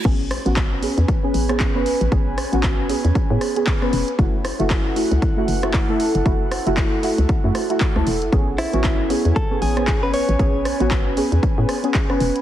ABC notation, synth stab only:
X:1
M:4/4
L:1/16
Q:"Swing 16ths" 1/4=116
K:A
V:1 name="Synth stab"
[B,CG] z2 [B,CF]3 [B,CG] z2 [B,CG]2 [B,CG]2 [B,CB]3 | [B,CG] z2 [B,CF]3 [B,CG] z2 [B,CG]2 [B,CG]2 [B,CB]3 | [A,EF] z2 [A,EF]3 [A,EF] z2 [A,EF]2 [A,EF]2 [A,EA]3 | [A,EF] z2 [A,EF]3 [A,EF] z2 [A,EF]2 [A,EF]2 [A,EA]3 |
[B,CG] z2 [B,CF]3 [B,CG] z2 [B,CG]2 [B,CG]2 [B,CB]3 | [B,CG] z2 [B,CF]3 [B,CG] z2 [B,CG]2 [B,CG]2 [B,CB]3 |]